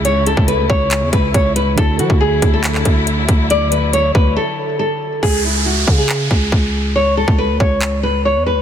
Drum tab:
HH |x-x-x---x-x-x-x-|x-x---x-x-x-x-x-|x-x-x-----------|----------------|
CP |--------x-------|--------xx------|----------------|--------x-------|
BD |---o--o---o-o---|o--o--o---o---o-|------o---------|o-----o---o-o---|

HH |----------------|
CP |--------x-------|
BD |---o--o---------|